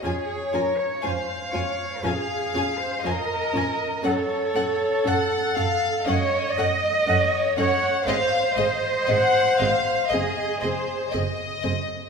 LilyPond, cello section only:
\new Staff \with { instrumentName = "Cello section" } { \time 4/4 \key des \major \tempo 4 = 60 aes'8 bes'16 des''16 c''8 des''8 aes'8. c''16 bes'4 | a'2 des''8 ees''4 des''8 | c''2 aes'4 r4 | }